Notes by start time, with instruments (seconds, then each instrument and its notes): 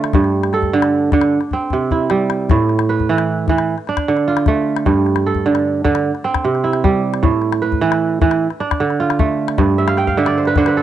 Already playing: kora D3 A3 D4 F4
0.04 calabash click
0.13 kora G2, calabash thump
0.24 calabash click
0.43 calabash click
0.53 kora A4, calabash click
0.62 calabash thump
0.73 kora D3
0.82 calabash click
1.12 kora D3, calabash thump, calabash click
1.21 calabash click
1.41 calabash click
1.51 kora C4, calabash thump
1.70 kora C3, calabash thump
1.91 kora E4, calabash thump
2.10 kora G3, calabash click
2.30 calabash click
2.49 kora A2, calabash thump
2.69 calabash click
2.79 calabash click
2.89 kora B4
3.00 calabash thump
3.09 kora E3
3.18 calabash click
3.48 kora E3, calabash thump
3.58 calabash click
3.78 calabash click
3.87 kora D4, calabash click
3.97 calabash thump, calabash click
4.08 kora D3
4.17 calabash click
4.28 kora F4
4.37 calabash click
4.46 kora A3, calabash thump, calabash click
4.76 calabash click
4.86 kora G2, calabash thump
5.06 calabash click
5.16 calabash click
5.26 kora A4
5.35 calabash thump
5.46 kora D3
5.55 calabash click
5.84 kora D3, calabash thump
5.95 calabash click
6.15 calabash click
6.24 kora C4, calabash click
6.34 calabash thump, calabash click
6.45 kora C3
6.55 calabash click
6.64 kora E4
6.73 calabash click
6.84 kora G3, calabash thump, calabash click
7.14 calabash click
7.23 kora A2, calabash thump
7.42 calabash click
7.52 calabash click
7.62 kora B4
7.72 calabash thump
7.81 kora E3
7.92 calabash click
8.21 kora E3, calabash thump
8.31 calabash click
8.50 calabash click
8.60 kora D4, calabash click
8.71 calabash thump, calabash click
8.80 kora D3
8.90 calabash click
9.00 kora F4
9.10 calabash click
9.19 kora A3, calabash thump, calabash click
9.48 calabash click
9.58 kora G2, calabash thump, calabash click
9.78 kora E5
9.88 kora F5, calabash click
9.97 kora G5, calabash click
10.07 kora F5, calabash thump
10.17 kora D3 E5
10.26 kora D5, calabash click
10.38 kora C5
10.45 kora B4, calabash click
10.56 kora D3 C5, calabash thump
10.66 kora B4, calabash click
10.77 kora A4